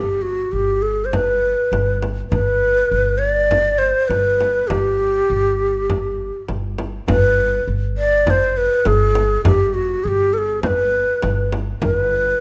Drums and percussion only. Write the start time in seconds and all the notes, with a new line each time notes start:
1.13 frame drum
1.73 frame drum
2.02 frame drum
2.32 frame drum
3.51 frame drum
4.11 frame drum
4.41 frame drum
4.70 frame drum
5.90 frame drum
6.48 frame drum
6.78 frame drum
7.08 tombak dum, frame drum
7.52 tombak ka
8.26 tombak dum, frame drum
8.85 tombak tek, frame drum
9.15 tombak tek, frame drum
9.45 tombak dum, frame drum
9.89 tombak ka
10.63 frame drum, tombak dum
10.78 tombak ka
11.22 tombak tek, frame drum
11.52 tombak tek, frame drum
11.82 frame drum, tombak dum
12.27 tombak ka